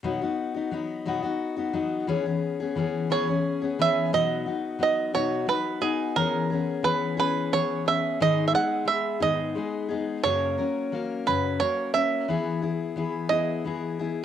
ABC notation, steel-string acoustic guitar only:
X:1
M:6/8
L:1/16
Q:3/8=59
K:B
V:1 name="Steel-string acoustic guitar"
[B,,F,B,DF] [B,DF]2 [B,DF] [F,B,DF]2 [B,,F,B,DF] [B,DF]2 [B,DF] [F,B,DF]2 | [E,B,CG] [B,CG]2 [B,CG] [E,B,CG]2 [E,B,CG] [B,CG]2 [B,CG] [E,B,CG]2 | [B,,F,B,DF]2 [B,DF]2 [F,B,DF]2 [B,,F,B,DF]2 [F,B,DF]2 [B,DF]2 | [E,B,CG]2 [B,CG]2 [E,B,CG]2 [E,B,CG]2 [E,B,CG]2 [B,CG]2 |
[G,,D,G,B,DG]2 [G,B,DG]2 [G,B,G]2 [G,,D,G,B,DG]2 [G,B,DG]2 [G,B,DG]2 | [F,,C,F,A,CA]2 [F,A,CA]2 [F,A,CA]2 [F,,C,F,C]2 [F,A,CA]2 [F,A,CA]2 | [E,B,EG]2 [B,EG]2 [E,B,EG]2 [E,B,EG]2 [E,B,EG]2 [B,EG]2 |]